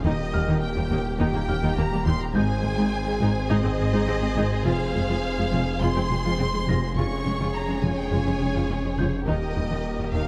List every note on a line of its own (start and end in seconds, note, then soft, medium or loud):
0.00 0.61 D#5 medium
0.00 1.16 G6 soft
0.00 0.29 A#6 medium
0.04 2.37 D#1 medium
0.04 0.10 D#2 medium
0.04 0.11 D#2 medium
0.04 0.13 D#3 loud
0.04 0.10 A#3 medium
0.04 2.31 A#3 medium
0.04 0.10 D#4 medium
0.04 2.31 G4 medium
0.33 0.39 D#2 soft
0.33 0.40 D#2 medium
0.33 0.39 G3 medium
0.33 0.39 A#3 soft
0.33 0.42 D#4 medium
0.33 1.47 F6 medium
0.48 0.53 D#2 medium
0.48 0.57 D#3 medium
0.48 0.53 A#3 medium
0.48 0.54 D#4 medium
0.61 1.18 G5 medium
0.75 0.82 D#2 medium
0.75 0.81 G3 soft
0.75 0.82 A#3 medium
0.75 0.85 D#4 medium
0.90 0.96 D#2 medium
0.90 0.97 D#2 medium
0.90 0.99 D#3 medium
0.90 0.97 A#3 medium
0.90 0.97 D#4 medium
1.19 1.25 D#2 medium
1.19 1.29 D#3 medium
1.19 1.25 A#3 medium
1.19 1.25 D#4 medium
1.19 1.76 G5 medium
1.34 1.40 D#2 medium
1.34 1.40 A#3 medium
1.34 1.43 D#4 medium
1.48 1.54 D#2 medium
1.48 1.54 G3 medium
1.48 1.54 A#3 soft
1.48 1.57 D#4 medium
1.48 3.18 F6 soft
1.62 1.68 D#2 medium
1.62 1.72 D#3 medium
1.62 1.69 A#3 medium
1.62 1.69 D#4 medium
1.77 1.83 D#2 soft
1.77 1.83 D#2 medium
1.77 1.84 A#3 medium
1.77 1.87 A#3 medium
1.77 2.06 A#5 medium
1.92 1.97 D#2 medium
1.92 2.01 G3 medium
1.92 1.98 G3 medium
1.92 1.99 A#3 soft
2.06 2.11 D#2 medium
2.06 2.12 D#2 medium
2.06 2.15 D#3 medium
2.06 2.12 A#3 medium
2.06 2.12 D#4 medium
2.06 2.20 C6 medium
2.21 2.35 A#5 medium
2.34 2.41 G#1 medium
2.34 4.68 G#1 medium
2.34 2.40 G#2 medium
2.34 2.44 G#3 medium
2.34 2.41 G#3 medium
2.34 6.80 C4 medium
2.34 2.41 D#4 medium
2.34 6.96 G#4 medium
2.34 6.80 G#4 medium
2.34 6.96 C5 medium
2.34 3.48 G#5 loud
2.34 4.04 G#5 soft
2.34 4.04 G6 medium
2.63 2.70 G#1 medium
2.63 2.69 G#2 soft
2.63 2.70 G#3 medium
2.63 2.73 G#4 medium
2.77 2.83 G#2 medium
2.77 2.87 G#3 medium
2.77 2.84 G#3 medium
2.77 2.84 D#4 medium
3.06 3.12 G#2 medium
3.06 3.13 G#3 medium
3.06 3.16 G#4 medium
3.21 3.27 G#1 medium
3.21 3.27 G#2 medium
3.21 3.27 G#3 medium
3.21 3.30 G#3 medium
3.21 3.27 D#4 medium
3.49 3.56 G#1 medium
3.49 3.56 G#2 medium
3.49 3.56 G#3 medium
3.49 3.59 G#3 medium
3.49 3.55 D#4 medium
3.49 4.66 D#5 medium
3.63 3.70 G#2 soft
3.63 3.70 G#3 medium
3.63 3.70 C4 medium
3.63 3.74 G#4 medium
3.79 3.85 G#1 soft
3.79 3.85 G#2 medium
3.79 3.85 G#3 medium
3.79 3.88 G#4 soft
3.93 3.99 G#2 medium
3.93 3.99 G#3 medium
3.93 4.02 G#3 medium
3.93 3.99 D#4 medium
4.07 4.14 G#1 medium
4.07 4.13 G#2 medium
4.07 4.13 G#3 medium
4.07 4.14 C4 medium
4.07 4.17 D#4 medium
4.07 5.77 A#6 soft
4.22 4.28 G#2 medium
4.22 4.28 G#3 medium
4.22 4.32 C4 medium
4.36 4.42 G#1 medium
4.36 4.42 G#2 medium
4.36 4.45 G#3 medium
4.36 4.42 G#3 medium
4.36 4.42 D#4 medium
4.65 4.71 F1 medium
4.65 9.29 F1 medium
4.65 4.71 F2 medium
4.65 4.74 F3 medium
4.65 4.71 G#3 medium
4.65 4.71 F4 medium
4.65 5.79 F5 loud
4.94 5.00 F1 soft
4.94 5.00 F2 soft
4.94 5.00 G#3 medium
4.94 5.04 F4 medium
5.09 5.15 F2 medium
5.09 5.18 F3 medium
5.09 5.15 G#3 medium
5.09 5.15 F4 medium
5.38 5.43 F2 medium
5.38 5.44 G#3 medium
5.38 5.47 F4 medium
5.52 5.58 F1 medium
5.52 5.58 F2 medium
5.52 5.61 F3 medium
5.52 5.58 G#3 medium
5.52 5.58 F4 medium
5.81 5.87 F1 medium
5.81 5.87 F2 medium
5.81 5.90 F3 medium
5.81 5.88 G#3 medium
5.81 5.87 F4 medium
5.81 6.97 C6 loud
5.95 6.01 F2 soft
5.95 6.01 G#3 medium
5.95 6.02 C4 soft
5.95 6.05 F4 medium
6.10 6.16 F1 medium
6.10 6.16 F2 medium
6.10 6.16 G#3 medium
6.10 6.20 F4 medium
6.25 6.31 F2 medium
6.25 6.34 F3 medium
6.25 6.30 G#3 medium
6.25 6.30 F4 medium
6.39 6.45 F1 soft
6.39 6.45 F2 soft
6.39 6.45 G#3 medium
6.39 6.45 C4 soft
6.39 6.48 C4 medium
6.53 6.59 F2 soft
6.53 6.59 G#3 medium
6.53 6.63 G#3 medium
6.68 6.74 F1 medium
6.68 6.74 F2 medium
6.68 6.77 F3 medium
6.68 6.74 G#3 medium
6.68 6.74 F4 medium
6.68 8.37 A#6 soft
6.96 7.02 F1 medium
6.96 7.03 F2 medium
6.96 7.06 C#3 medium
6.96 7.03 G#3 medium
6.96 9.24 C#4 medium
6.96 7.03 F4 medium
6.96 9.23 G#4 medium
6.96 9.24 G#4 medium
6.96 9.27 C#5 medium
6.96 7.53 C#6 loud
7.25 7.31 F1 soft
7.25 7.31 F2 soft
7.25 7.32 G#3 soft
7.25 7.34 C#4 medium
7.39 7.45 F2 medium
7.39 7.49 C#3 medium
7.39 7.46 G#3 soft
7.39 7.45 F4 medium
7.54 7.83 A#5 medium
7.68 7.74 F2 soft
7.68 7.74 G#3 soft
7.68 7.78 C#4 medium
7.83 7.89 F1 medium
7.83 7.89 F2 medium
7.83 7.92 C#3 medium
7.83 7.89 G#3 medium
7.83 7.89 F4 medium
7.83 7.97 G#5 medium
7.98 8.12 G5 medium
8.11 8.18 F1 medium
8.11 8.17 F2 medium
8.11 8.21 C#3 medium
8.11 8.17 G#3 medium
8.11 8.17 F4 medium
8.11 8.97 G#5 medium
8.26 8.32 F2 soft
8.26 8.31 G#3 soft
8.26 8.32 C#4 soft
8.26 8.35 C#4 medium
8.40 8.47 F1 soft
8.40 8.46 F2 medium
8.40 8.46 G#3 medium
8.40 8.50 C#4 medium
8.54 8.61 F2 medium
8.54 8.64 C#3 medium
8.54 8.60 G#3 medium
8.54 8.60 F4 medium
8.69 8.76 F1 soft
8.69 8.76 F2 soft
8.69 8.75 G#3 soft
8.69 8.79 G#3 medium
8.69 8.75 C#4 soft
8.84 8.90 F2 soft
8.84 8.94 F3 medium
8.84 8.90 G#3 medium
8.98 9.04 F1 medium
8.98 9.04 F2 medium
8.98 9.07 C#3 medium
8.98 9.04 G#3 soft
8.98 9.04 F4 medium
8.98 10.28 G6 soft
9.27 10.28 D#1 medium
9.27 9.33 D#2 medium
9.27 9.34 D#2 medium
9.27 9.33 D#3 medium
9.27 9.36 D#3 medium
9.27 10.28 A#3 medium
9.27 9.33 D#4 medium
9.27 10.28 G4 medium
9.27 10.28 G4 soft
9.27 10.28 A#4 medium
9.27 10.10 D#5 medium
9.56 9.62 D#2 soft
9.56 9.63 D#3 soft
9.56 9.62 G3 soft
9.56 9.65 D#4 medium
9.71 9.76 D#2 medium
9.71 9.79 D#3 medium
9.71 9.77 D#3 soft
9.71 9.77 D#4 medium
9.99 10.06 D#2 soft
9.99 10.05 D#3 soft
9.99 10.05 G3 soft
9.99 10.08 D#4 soft
10.13 10.19 D#2 medium
10.13 10.20 D#2 medium
10.13 10.22 D#3 medium
10.13 10.20 D#3 medium
10.13 10.20 D#4 medium
10.13 10.28 F5 medium